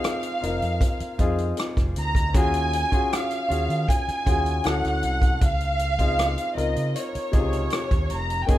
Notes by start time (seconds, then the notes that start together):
Already playing: C4 D#4 F4 G#4 F5
0.04 cross-stick, closed hi-hat
0.23 closed hi-hat
0.41 F1 C4 D#4 F4 A#4, closed hi-hat
0.62 F2, closed hi-hat
0.81 kick, closed hi-hat
1.00 muted fingered electric bass stroke, closed hi-hat
1.19 F2 C4 D#4 F4 G#4, kick, closed hi-hat
1.38 closed hi-hat
1.57 cross-stick, closed hi-hat
1.77 F1, kick, cross-stick, closed hi-hat
1.96 D2 A#5, closed hi-hat
2.15 kick, closed hi-hat
2.34 D#2 C#4 F4 F#4 G#4 G#5, kick, closed hi-hat
2.54 closed hi-hat
2.73 closed hi-hat
2.91 C#4 F4 F#4 G#4, kick, closed hi-hat
3.13 F5, cross-stick, closed hi-hat
3.31 closed hi-hat
3.48 D#2 C#4 F4 F#4 G#4, closed hi-hat
3.69 D#3, closed hi-hat
3.89 G#5, kick, closed hi-hat
4.08 muted fingered electric bass stroke, closed hi-hat
4.26 D#2 C#4 F4 F#4 G#4, kick, closed hi-hat
4.46 closed hi-hat
4.64 D2 C#4 E4 F#4 A4 F#5, cross-stick, closed hi-hat
4.85 D2, cross-stick, closed hi-hat
5.03 C2, closed hi-hat
5.22 kick, closed hi-hat
5.41 C#2 F5, kick, closed hi-hat
5.60 closed hi-hat
5.79 closed hi-hat
5.99 C4 D#4 F4 G#4, kick, closed hi-hat
6.19 cross-stick, closed hi-hat
6.38 closed hi-hat
6.55 C#2 C4 D#4 F4 A#4, closed hi-hat
6.59 D#5
6.76 C#3, closed hi-hat
6.96 C#5, closed hi-hat
7.15 muted fingered electric bass stroke, closed hi-hat
7.32 C#2 C3 D#4 F4 G#4, kick, closed hi-hat
7.53 closed hi-hat
7.70 cross-stick, closed hi-hat
7.91 D#2, kick, closed hi-hat
8.10 F1 A#5, closed hi-hat
8.30 closed hi-hat
8.44 A#3 C#4 G5
8.48 F#1 D#4 G#4 G#5, kick, closed hi-hat